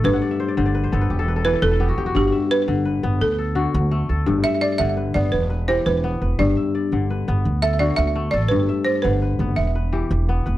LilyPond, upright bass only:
\new Staff \with { instrumentName = "Upright bass" } { \clef bass \time 12/8 \key g \major \tempo 4. = 113 g,,8 r4 g,,4 g,,8 e,,4. e,,4 e,,8 | g,,8 r4 g,,4 g,,8 d,4. d,4 d,8 | g,,8 r4 g,,4 g,,8 e,,4. e,,4 e,,8 | g,,8 r4 g,,4 g,,8 d,4. d,4 a,,8 |
g,,8 r4 g,,4 fis,,8 e,,4. e,,4 e,,8 | }